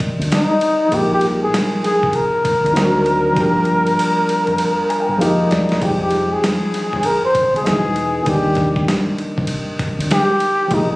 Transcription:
Already playing: grand piano D#3 G3 A#3 G4 D5
0.00 kick, ride
0.19 fingered electric bass D2, ride
0.32 flugelhorn D#4, snare, hi-hat pedal, ride
0.61 ride
0.88 fingered electric bass A#1, grand piano F3 G#3 A#3, kick, ride
0.94 grand piano D#4 A#4, flugelhorn G4
1.13 flugelhorn G4
1.21 snare, ride
1.44 flugelhorn G#4
1.54 snare, hi-hat pedal, ride
1.84 flugelhorn G#4, snare, ride
2.03 fingered electric bass C2, kick
2.13 flugelhorn A#4, ride
2.45 kick, ride
2.64 fingered electric bass D2, ride
2.73 fingered electric bass D2, grand piano D#3 F#3 C4 D4 F4, snare, hi-hat pedal, ride
2.84 grand piano F#4
3.06 ride
3.33 fingered electric bass G1, grand piano F3 G3 A#3, kick, ride
3.38 grand piano D4 G4
3.65 ride
3.87 ride
3.99 hi-hat pedal, ride
4.29 ride
4.47 fingered electric bass F1, ride
4.58 ride
4.89 grand piano G#5, ride
5.00 grand piano G5
5.09 fingered electric bass G1
5.18 fingered electric bass F1, grand piano F3 G#3 A#3 D#4 F5, hi-hat pedal, ride
5.22 flugelhorn D#4, grand piano G4
5.50 fingered electric bass E1, grand piano D5, snare, ride
5.69 snare, ride
5.77 grand piano F3 G#3 C4
5.82 fingered electric bass F1, grand piano D#4 G5, flugelhorn G4, kick, ride
6.02 flugelhorn G4
6.11 snare, ride
6.33 flugelhorn G#4
6.44 snare, hi-hat pedal, ride
6.74 snare, ride
6.93 fingered electric bass G1, kick
7.03 flugelhorn A#4, ride
7.25 flugelhorn C5
7.35 kick, ride
7.54 fingered electric bass G#1, flugelhorn G#4, ride
7.63 fingered electric bass E1, grand piano E3 G#3 B3 D#4 G#4, snare, hi-hat pedal, ride
7.67 flugelhorn G#4
7.96 ride
8.22 grand piano D#3 G3
8.26 fingered electric bass D#2, grand piano A#3 D4 G4, flugelhorn G4, kick, ride
8.55 kick, snare, ride
8.76 kick
8.88 snare, hi-hat pedal, ride
9.18 ride
9.37 fingered electric bass C2, kick
9.47 ride
9.79 kick, ride
9.99 fingered electric bass D2, ride
10.11 flugelhorn G4, snare, hi-hat pedal, ride
10.40 ride
10.68 fingered electric bass A#1, grand piano F3 G#3 A#3, kick, ride
10.73 grand piano D#3 G#4, flugelhorn D#4

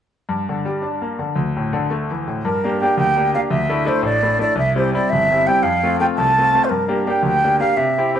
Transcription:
0.29 grand piano G2
0.49 grand piano D3
0.65 grand piano G3
0.82 grand piano D4
1.02 grand piano A#3
1.19 grand piano D3
1.36 grand piano D2
1.57 grand piano A2
1.73 grand piano D3
1.90 grand piano A3
2.11 grand piano E3
2.27 grand piano A2
2.45 grand piano G2, flute A#4
2.64 grand piano A#3 D4 G4
2.80 grand piano A#3 D4 G4, flute G5
2.97 grand piano D2, flute G5
3.16 grand piano A#3 D4 G4
3.34 grand piano A#3 D4 G4, flute F5
3.50 grand piano D2, flute E5
3.69 grand piano A3 D4 E4
3.86 grand piano A3 D4 E4, flute C5
4.03 grand piano A1, flute D5
4.23 grand piano A3 D4 E4
4.39 grand piano A3 D4 E4, flute D5
4.55 grand piano C2, flute E5
4.75 grand piano G3 C4 E4, flute C5
4.94 grand piano G3 C4 E4, flute D5
5.10 grand piano G1, flute E5
5.31 grand piano G3 C4 E4
5.47 grand piano G3 C4 E4, flute G5
5.63 grand piano F2, flute F5
5.83 grand piano A3 C4 F4
6.00 grand piano A3 C4 F4, flute G5
6.17 grand piano C2, flute A5
6.38 grand piano A3 C4 F4
6.55 grand piano A3 C4 F4
6.64 flute C5
6.70 grand piano G2, flute A#4
6.88 grand piano A#3 D4 G4
7.07 grand piano A#3 D4 G4, flute G5
7.23 grand piano D2, flute G5
7.44 grand piano A#3 D4 G4
7.60 grand piano A#3 D4 G4, flute F5
7.77 grand piano C3, flute E5
7.98 grand piano C4 E4 G4
8.15 grand piano C4 E4 G4, flute C5

